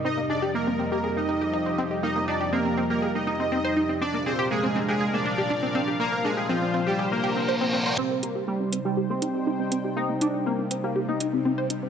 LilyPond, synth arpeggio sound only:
\new Staff \with { instrumentName = "Synth arpeggio sound" } { \time 4/4 \key c \minor \tempo 4 = 121 c'16 bes16 aes'16 g'16 bes16 c'16 c'16 g'16 aes'16 bes16 ees'16 g'16 ees'16 c'16 c'16 g'16 | bes16 bes16 ees'16 g'16 c'16 c'16 c'16 g'16 aes'16 bes16 ees'16 c'16 c'16 c''16 ees'16 c'16 | c'16 bes16 aes'16 g'16 bes16 c'16 c'16 g'16 aes'16 bes16 d'16 g'16 d'16 c'16 c'16 g'16 | bes16 bes16 d'16 g'16 c'16 c'16 c'16 g'16 aes'16 bes16 g'16 c'16 c''16 c'16 c'16 c''16 |
c'16 bes16 g'16 g'16 bes16 c'16 c'16 g'16 g'16 bes16 ees'16 g'16 ees'16 c'16 c'16 g'16 | bes16 bes16 ees'16 g'16 c'16 c'16 c'16 g'16 g'16 bes16 ees'16 c'16 c'16 c''16 ees'16 c'16 | }